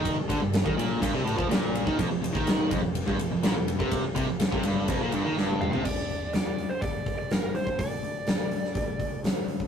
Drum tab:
CC |----------------|----------------|----------------|x---------------|
RD |x-x-x-x-x-x-x-x-|x-x-x-x-x-x-x-x-|x-x-x-x-x-x-----|----------------|
HH |----------------|----------------|----------------|--o-o-o-o-o-o-o-|
SD |----o-------o---|----o-------o---|----o-------o---|----o-------o---|
T1 |----------------|----------------|-------------o--|----------------|
T2 |----------------|----------------|--------------o-|----------------|
FT |----------------|----------------|---------------o|----------------|
BD |o-o--o--o--o---o|o--o--o--o-----o|o-o--o--o-------|o-------o-o----o|

CC |----------------|
RD |----------------|
HH |o-o-o-o-o-o-o-o-|
SD |----o--o----o---|
T1 |----------------|
T2 |----------------|
FT |----------------|
BD |o-------o-o----o|